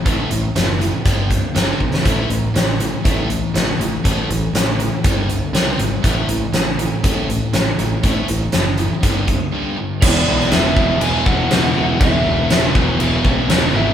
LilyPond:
<<
  \new Staff \with { instrumentName = "Lead electric guitar" } { \time 4/4 \key g \lydian \tempo 4 = 120 r1 | r1 | r1 | r1 |
r1 | \key e \mixolydian d''4 e''4 gis''8 fis''4. | e''4. r2 e''8 | }
  \new Staff \with { instrumentName = "Distorted electric guitar" } { \time 4/4 \key g \lydian r1 | r1 | r1 | r1 |
r1 | \key e \mixolydian <e gis b e'>2~ <e gis b e'>8 <e gis b e'>8 <e gis b e'>4 | <e gis b e'>2~ <e gis b e'>8 <e gis b e'>8 <e gis b e'>4 | }
  \new Staff \with { instrumentName = "Distorted electric guitar" } { \clef bass \time 4/4 \key g \lydian <a, e a>8 <a, e>8 <a, e>8 <a, e>8 <g, d g>8 <g, d>8 <g, d g>8 <g, d>8 | <a, e a>8 <a, e>8 <a, e>8 <a, e>8 <a, e a>8 <a, e>8 <a, e>8 <a, e>8 | <a, e a>8 <a, e>8 <a, e>8 <a, e>8 <g, d g>8 <g, d>8 <c g c'>8 <c g>8 | <a, e a>8 <a, e>8 <a, e>8 <a, e>8 <a, e a>8 <a, e>8 <a, e>8 <a, e>8 |
<a, e a>8 <a, e>8 <a, e>8 <a, e>8 <g, d g>8 <g, d>8 <g, d g>8 <g, d>8 | \key e \mixolydian <e, b, e>4 <e, b, e>8 <e, b, e>8 <e, b, e>4 <e, b, e>8 <e, b, e>8 | <e, b, e>4 <e, b, e>8 <e, b, e>8 <e, b, e>4 <e, b, e>8 <e, b, e>8 | }
  \new Staff \with { instrumentName = "Distorted electric guitar" } { \clef bass \time 4/4 \key g \lydian <a, e a>8 <a, e>8 <a, e>8 <a, e>8 <g, d g>8 <g, d>8 <g, d g>8 <g, d>8 | <a, e a>8 <a, e>8 <a, e>8 <a, e>8 <a, e a>8 <a, e>8 <a, e>8 <a, e>8 | <a, e a>8 <a, e>8 <a, e>8 <a, e>8 <g, d g>8 <g, d>8 <c g c'>8 <c g>8 | <a, e a>8 <a, e>8 <a, e>8 <a, e>8 <a, e a>8 <a, e>8 <a, e>8 <a, e>8 |
<a, e a>8 <a, e>8 <a, e>8 <a, e>8 <g, d g>8 <g, d>8 <g, d g>8 <g, d>8 | \key e \mixolydian <e, b, e>4 <e, b, e>8 <e, b, e>8 <e, b, e>4 <e, b, e>8 <e, b, e>8 | <e, b, e>4 <e, b, e>8 <e, b, e>8 <e, b, e>4 <e, b, e>8 <e, b, e>8 | }
  \new Staff \with { instrumentName = "Picked electric bass" } { \clef bass \time 4/4 \key g \lydian a,,8 a,,8 fis,,4 g,,4 g,,8 b,,8 | a,,8 a,,8 a,,4 a,,4 a,,8 a,,8 | a,,8 a,,8 a,,4 g,,4 c,8 gis,,8 | a,,8 a,,8 a,,4 a,,4 a,,8 a,,8 |
a,,8 a,,8 fis,,4 g,,4 r4 | \key e \mixolydian e,,8 b,,8 e,,8 e,,8 e,,8 e,,8 e,,8 e,,8 | e,,8 e,,8 e,,8 e,,8 e,,8 b,,8 e,,8 gis,,8 | }
  \new DrumStaff \with { instrumentName = "Drums" } \drummode { \time 4/4 <hh bd>8 hh8 <hh sn>8 hh8 <hh bd>8 <hh bd>8 <hh sn>8 bd16 sn16 | <hh bd>8 hh8 <hh sn>8 hh8 <hh bd>8 hh8 <hh sn>8 hh8 | <hh bd>8 hh8 <hh sn>8 hh8 <hh bd>8 hh8 <hh sn>8 hh8 | <hh bd>8 hh8 <hh sn>8 hh8 <hh bd>8 hh8 <hh sn>8 hh8 |
<hh bd>8 hh8 <hh sn>8 hh8 <hh bd>8 <hh bd>8 r4 | <cymc bd>8. sn16 <cymc sn>8 bd8 cymc8 bd8 <cymc sn>4 | <cymc bd>4 <cymc sn>8 bd8 cymc8 bd8 <cymc sn>4 | }
>>